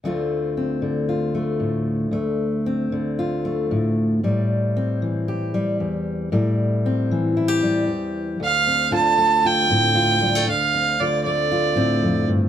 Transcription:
<<
  \new Staff \with { instrumentName = "Fiddle" } { \time 4/4 \key d \minor \tempo 4 = 115 r1 | r1 | r1 | r1 |
f''4 a''4 g''2 | f''4 d''8 d''2 r8 | }
  \new Staff \with { instrumentName = "Steel-string acoustic guitar" } { \time 4/4 \key d \minor << { <d a c' f'>4 c'4 f'8 a4. | a4 c'4 f'8 a4. | g4 c'4 g'8 g4. | g4 c'4 e'16 g'16 g4. |
r8 c'8 f'8 a8 f'8 c'8 f'8 g16 a16 | r8 c'8 f'8 a8 f'8 c'4. | } \\ { d,4. d4. a,4 | d,4. d4. a,4 | a,4. e4. e,4 | a,4. e4. e,4 |
d,4 d4. a,4. | d,4 d4. a,8 f,8 g,8 | } >> }
>>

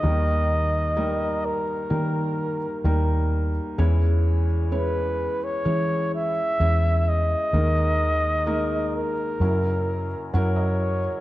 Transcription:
<<
  \new Staff \with { instrumentName = "Flugelhorn" } { \time 4/4 \key dis \phrygian \tempo 4 = 64 dis''4. ais'2 r8 | r4 b'8. cis''8. e''4 dis''8~ | dis''4. ais'4. cis''4 | }
  \new Staff \with { instrumentName = "Felt piano" } { \time 4/4 \key dis \phrygian << { r1 | r1 | r2. fis''16 dis''8. | } \\ { <g ais dis' ais'>8 r8 <g ais dis' ais'>8 r8 <g ais dis' ais'>8 r8 <g ais dis' ais'>8 r8 | <gis cis' e' cis''>8 r8 <gis cis' e' cis''>8 r8 <gis cis' e' cis''>8 r8 <gis cis' e' e''>8 r8 | <gis ais dis' ais'>8 r8 <gis ais dis' ais'>8 r8 <fis cis' e' ais'>8 r8 <fis cis' e' ais'>8 r8 | } >> }
  \new Staff \with { instrumentName = "Felt piano" } { \clef bass \time 4/4 \key dis \phrygian <dis, dis>1 | <e, e>1 | <dis, dis>2 <fis,, fis,>2 | }
  \new Staff \with { instrumentName = "Fingered electric bass" } { \clef bass \time 4/4 \key dis \phrygian dis,2 dis4 dis,4 | e,2 e4 e,4 | dis,2 fis,4 fis,4 | }
>>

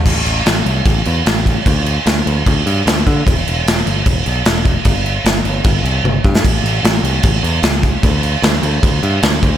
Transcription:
<<
  \new Staff \with { instrumentName = "Picked electric bass" } { \clef bass \time 4/4 \key d \mixolydian \tempo 4 = 150 a,,8 a,,8 a,,8 c,8 a,,8 e,8 a,,4 | d,4 d,8 d,8 d,8 g,8 d,8 d8 | e,,8 e,,8 e,,8 g,,8 e,,8 b,,8 e,,4 | g,,4 g,,8 g,,8 g,,8 c,8 g,,8 g,8 |
a,,8 a,,8 a,,8 c,8 a,,8 e,8 cis,4 | d,4 d,8 d,8 d,8 g,8 d,8 d,8 | }
  \new DrumStaff \with { instrumentName = "Drums" } \drummode { \time 4/4 <cymc bd>8 cymc8 <cymc sn>8 cymc8 <cymc bd>8 cymc8 <cymc sn>8 <cymc bd>8 | <cymc bd>8 cymc8 <cymc sn>8 cymc8 <cymc bd>8 cymc8 <cymc sn>8 <cymc bd>8 | <cymc bd>8 cymc8 <cymc sn>8 cymc8 <cymc bd>8 cymc8 <cymc sn>8 <cymc bd>8 | <cymc bd>8 cymc8 <cymc sn>8 cymc8 <cymc bd>8 cymc8 tommh8 bd16 sn16 |
<cymc bd>8 cymc8 <cymc sn>8 cymc8 <cymc bd>8 cymc8 <cymc sn>8 <cymc bd>8 | <cymc bd>8 cymc8 <cymc sn>8 cymc8 <cymc bd>8 cymc8 <cymc sn>8 <cymc bd>8 | }
>>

